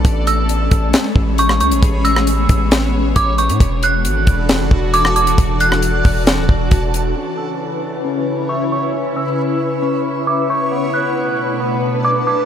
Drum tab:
HH |x-x-x-x-x---x-xx|x-x-x-x-x---x-xx|x-x-x-x-x---x-xx|x-x-x-o-x---x-x-|
SD |--------o----r--|---r----o-------|--------o----r--|---r----o-------|
BD |o-----o---o-----|o-----o-----o---|o-----o---o-----|o-----o---o-o---|

HH |----------------|----------------|----------------|
SD |----------------|----------------|----------------|
BD |----------------|----------------|----------------|